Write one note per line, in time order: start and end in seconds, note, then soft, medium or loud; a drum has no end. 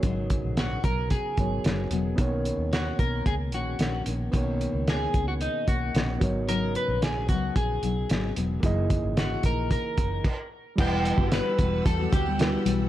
0.00 0.35 G#1 loud
0.00 0.83 G#2 medium
0.00 0.82 C#3 medium
0.00 0.84 F#3 medium
0.00 1.33 B3 medium
0.00 0.85 B3 medium
0.00 1.34 F#4 medium
0.00 1.35 A#4 medium
0.00 1.36 C#5 medium
0.00 kick loud
0.00 closed hi-hat medium
0.04 0.85 D#4 medium
0.30 kick medium
0.30 closed hi-hat medium
0.44 0.76 A#1 medium
0.57 0.83 F#4 medium
0.57 snare loud
0.57 closed hi-hat medium
0.83 1.16 B1 medium
0.83 1.36 C#3 medium
0.83 1.37 F#3 medium
0.83 1.38 B3 medium
0.83 1.39 D#4 medium
0.83 1.11 A#4 medium
0.83 kick medium
0.83 closed hi-hat medium
1.10 1.87 G#4 medium
1.10 kick medium
1.10 closed hi-hat medium
1.37 1.59 G#1 medium
1.37 1.62 C#3 medium
1.37 1.63 F#3 medium
1.37 2.14 B3 soft
1.37 1.64 B3 medium
1.37 1.65 D#4 medium
1.37 2.19 F#4 soft
1.37 2.17 A#4 soft
1.37 2.19 C#5 soft
1.37 kick medium
1.37 closed hi-hat medium
1.63 1.86 F#1 medium
1.63 1.89 C#3 soft
1.63 1.90 F#3 medium
1.63 1.91 B3 medium
1.63 1.92 D#4 medium
1.63 snare medium
1.63 closed hi-hat medium
1.91 2.12 E1 medium
1.91 2.16 C#3 medium
1.91 2.17 F#3 medium
1.91 2.18 B3 medium
1.91 2.19 D#4 medium
1.91 closed hi-hat medium
2.16 2.50 B1 medium
2.16 2.97 B2 medium
2.16 2.98 D#3 medium
2.16 2.99 A#3 medium
2.16 4.28 B3 medium
2.16 3.00 C#4 medium
2.16 4.28 D#4 medium
2.16 4.29 A#4 medium
2.16 kick loud
2.16 closed hi-hat medium
2.21 4.31 C#5 medium
2.45 closed hi-hat medium
2.58 2.90 D#2 medium
2.73 2.97 F#4 medium
2.73 snare loud
2.73 closed hi-hat medium
2.98 3.20 B1 medium
2.98 3.50 B2 medium
2.98 3.52 D#3 medium
2.98 3.53 A#3 medium
2.98 3.54 C#4 medium
2.98 3.26 A#4 medium
2.98 kick medium
2.98 closed hi-hat medium
3.26 3.52 C#2 medium
3.26 3.34 G#4 medium
3.26 kick medium
3.26 closed hi-hat medium
3.51 3.74 A#1 medium
3.51 3.77 B2 medium
3.51 3.77 D#3 medium
3.51 3.78 A#3 medium
3.51 3.79 C#4 medium
3.51 4.03 F#4 medium
3.51 closed hi-hat medium
3.78 4.01 A#1 medium
3.78 4.03 B2 medium
3.78 4.05 D#3 medium
3.78 4.05 A#3 medium
3.78 4.06 C#4 medium
3.78 snare loud
3.78 closed hi-hat medium
4.04 4.28 A#1 medium
4.04 4.30 B2 medium
4.04 4.31 D#3 medium
4.04 4.32 A#3 medium
4.04 4.32 C#4 medium
4.04 closed hi-hat medium
4.31 4.66 B1 loud
4.31 5.12 B2 medium
4.31 5.13 D#3 medium
4.31 5.15 A#3 medium
4.31 6.17 B3 medium
4.31 5.15 C#4 medium
4.31 6.18 D#4 medium
4.31 6.18 A#4 medium
4.31 kick loud
4.31 closed hi-hat medium
4.37 6.19 C#5 medium
4.61 closed hi-hat medium
4.73 5.06 C#2 medium
4.88 5.27 G#4 loud
4.88 snare loud
4.88 closed hi-hat medium
5.13 5.46 C#2 medium
5.13 5.65 B2 medium
5.13 5.67 D#3 medium
5.13 5.68 A#3 medium
5.13 5.69 C#4 medium
5.13 kick medium
5.13 closed hi-hat medium
5.28 5.33 F#4 medium
5.41 5.66 D#4 medium
5.41 closed hi-hat medium
5.66 5.89 B1 medium
5.66 5.92 B2 soft
5.66 5.93 D#3 medium
5.66 5.94 A#3 medium
5.66 5.95 C#4 medium
5.66 6.18 F#4 medium
5.66 kick medium
5.66 closed hi-hat medium
5.93 6.16 A#1 medium
5.93 6.20 B2 medium
5.93 6.21 D#3 medium
5.93 6.21 A#3 medium
5.93 6.22 C#4 medium
5.93 snare loud
5.93 closed hi-hat medium
6.18 6.75 G#1 medium
6.18 6.47 C#3 medium
6.18 6.47 F#3 medium
6.18 8.31 B3 medium
6.18 6.47 B3 medium
6.18 8.32 F#4 medium
6.18 8.32 A#4 soft
6.18 kick loud
6.18 closed hi-hat medium
6.23 6.47 D#4 medium
6.23 8.34 C#5 medium
6.47 7.28 G#2 medium
6.47 7.27 C#3 medium
6.47 7.29 F#3 medium
6.47 7.29 B3 medium
6.47 7.31 D#4 medium
6.47 6.73 A#4 loud
6.47 closed hi-hat medium
6.75 7.01 B4 medium
6.75 closed hi-hat medium
6.88 7.29 A#1 medium
7.02 7.27 G#4 medium
7.02 snare loud
7.02 closed hi-hat medium
7.28 7.50 C#2 medium
7.28 7.80 C#3 medium
7.28 7.82 F#3 medium
7.28 7.82 B3 medium
7.28 7.84 D#4 medium
7.28 7.54 F#4 medium
7.28 kick medium
7.28 closed hi-hat medium
7.56 7.77 A#1 medium
7.56 8.33 G#4 medium
7.56 kick medium
7.56 closed hi-hat medium
7.81 8.04 B1 medium
7.81 8.08 C#3 medium
7.81 8.09 F#3 medium
7.81 8.10 B3 medium
7.81 8.10 D#4 medium
7.81 closed hi-hat medium
8.09 8.31 G#1 medium
8.09 8.34 C#3 soft
8.09 8.35 F#3 medium
8.09 8.36 B3 medium
8.09 8.37 D#4 medium
8.09 snare loud
8.09 closed hi-hat medium
8.35 8.58 E1 medium
8.35 8.61 C#3 medium
8.35 8.63 F#3 medium
8.35 8.63 B3 medium
8.35 8.63 D#4 medium
8.35 closed hi-hat medium
8.61 8.96 F#1 medium
8.61 9.43 F#2 medium
8.61 9.42 C#3 medium
8.61 9.44 E3 medium
8.61 10.20 A#3 medium
8.61 9.44 A#3 medium
8.61 9.44 D#4 medium
8.61 10.21 E4 medium
8.61 10.22 G#4 medium
8.61 kick loud
8.61 closed hi-hat medium
8.66 10.23 D#5 medium
8.90 kick medium
8.90 closed hi-hat medium
9.04 9.36 G#1 medium
9.17 9.45 F#4 medium
9.17 snare loud
9.17 closed hi-hat medium
9.43 9.76 A#1 medium
9.43 9.96 C#3 medium
9.43 9.98 E3 medium
9.43 9.98 A#3 medium
9.43 9.99 D#4 medium
9.43 9.70 A#4 medium
9.43 kick medium
9.43 closed hi-hat medium
9.71 10.48 A#4 medium
9.71 kick medium
9.71 closed hi-hat medium
9.97 10.19 F#1 medium
9.97 10.24 C#3 medium
9.97 10.25 E3 medium
9.97 10.25 A#3 medium
9.97 10.26 D#4 medium
9.97 kick medium
9.97 closed hi-hat medium
10.24 kick loud
10.24 crash medium
10.76 11.11 E1 loud
10.76 11.18 E3 medium
10.76 12.35 G3 medium
10.76 12.89 G3 medium
10.76 11.19 G3 medium
10.76 12.36 E4 medium
10.76 12.89 F#5 medium
10.76 12.37 F#5 medium
10.76 12.89 E6 medium
10.76 kick loud
10.76 crash loud
10.80 11.18 B3 medium
10.80 11.33 G4 loud
10.80 12.37 B4 medium
11.05 closed hi-hat medium
11.18 11.40 G1 medium
11.18 11.58 G3 soft
11.18 11.59 B3 soft
11.18 11.58 F#4 medium
11.18 kick medium
11.32 11.86 B4 loud
11.32 snare loud
11.32 closed hi-hat medium
11.58 11.80 E1 loud
11.58 11.99 E3 medium
11.58 11.99 G3 medium
11.58 11.99 B3 medium
11.58 11.97 F#4 medium
11.58 kick medium
11.58 closed hi-hat medium
11.86 12.07 E2 loud
11.86 12.13 A4 medium
11.86 kick loud
11.86 closed hi-hat medium
11.99 12.26 G3 soft
11.99 12.25 B3 soft
11.99 12.26 F#4 medium
12.12 12.56 D2 medium
12.12 12.63 G4 medium
12.12 kick loud
12.12 closed hi-hat medium
12.26 12.64 G3 soft
12.26 12.65 B3 medium
12.38 12.89 G3 soft
12.38 12.89 E4 soft
12.38 12.89 F#4 soft
12.38 12.89 B4 medium
12.38 snare loud
12.38 closed hi-hat medium
12.65 12.87 B1 medium
12.65 12.89 E3 medium
12.65 12.89 G3 medium
12.65 12.89 B3 medium
12.65 12.89 F#4 medium
12.65 closed hi-hat medium